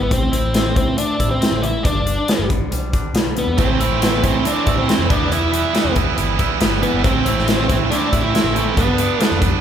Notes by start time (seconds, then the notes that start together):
Already playing: E3 G3 B3 E4
0.01 G#1 B3
0.10 A1 A2 C4, kick, closed hi-hat
0.32 E4, closed hi-hat
0.44 A1
0.54 C4, snare, closed hi-hat
0.75 A2 E3 C4, kick, closed hi-hat
0.97 A3 D4, closed hi-hat
1.20 A2 E4, kick, closed hi-hat
1.31 C4
1.40 C4, snare, closed hi-hat
1.52 A1
1.62 E3 E4, closed hi-hat
1.83 G1 G2 D4, kick, closed hi-hat
1.95 G1
2.06 D4, closed hi-hat
2.28 B3, snare, closed hi-hat
2.39 G1
2.50 D3, kick, closed hi-hat
2.71 B1 G3, closed hi-hat
2.93 D4, kick, closed hi-hat
3.14 B1 B3, snare, closed hi-hat
3.37 D3 B3, closed hi-hat
3.47 E2
3.57 A1 A2 E3 A3 C4 E4, kick, closed hi-hat
3.80 A2 E3 A3 C4 E4, closed hi-hat
3.92 A1
4.00 A2 E3 A3 C4 E4, snare, closed hi-hat
4.06 B3
4.22 A2 E3 A3 C4 E4, kick, closed hi-hat
4.44 A2 E3 A3 C4 D4 E4, closed hi-hat
4.66 A2 E3 A3 C4 E4, kick, closed hi-hat
4.78 C4
4.88 A2 E3 A3 C4 E4, snare, closed hi-hat
4.99 F1
5.09 E1 E3 G3 B3 D4 E4, kick, closed hi-hat
5.31 E3 G3 B3 E4, closed hi-hat
5.43 E1
5.51 E3 G3 B3 E4, closed hi-hat
5.73 E3 G3 B3 E4, snare, closed hi-hat
5.85 E1
5.94 E3 G3 B3 E4, kick, closed hi-hat
6.15 G1 E3 G3 B3 E4, closed hi-hat
6.38 E3 G3 B3 E4, kick, closed hi-hat
6.59 G1 E3 G3 B3 E4, snare, closed hi-hat
6.73 snare
6.82 E3 G3 B3 E4, closed hi-hat
6.94 G1
7.03 A1 A2 E3 A3 C4 E4, kick, closed hi-hat
7.26 A2 E3 A3 C4 E4, closed hi-hat
7.37 A1, snare
7.47 A2 E3 A3 C4 E4, snare, closed hi-hat
7.68 A2 E3 A3 C4 E4, kick, closed hi-hat
7.91 A2 E3 A3 C4 D4 E4, closed hi-hat
8.12 A2 E3 A3 C4 E4, kick, closed hi-hat
8.23 E4
8.33 A2 E3 A3 C4 E4, snare, closed hi-hat
8.44 A1, snare
8.54 A2 E3 A3 C4 E4, closed hi-hat
8.77 G1 G2 D3 G3 B3 D4, kick, closed hi-hat
8.87 G1
8.98 G2 D3 G3 B3 D4, closed hi-hat
9.20 G2 D3 G3 A3 B3 D4, snare, closed hi-hat
9.32 F1
9.41 G2 D3 G3 B3 D4, kick, closed hi-hat